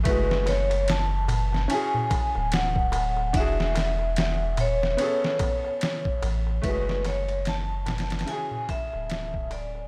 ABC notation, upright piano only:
X:1
M:4/4
L:1/8
Q:"Swing 16ths" 1/4=73
K:F#m
V:1 name="Upright piano"
[G,A,EF]4 [CEFG]4 | [DEFG]4 [B,CGA]4 | [G,A,EF]4 [C,EFG]4 |]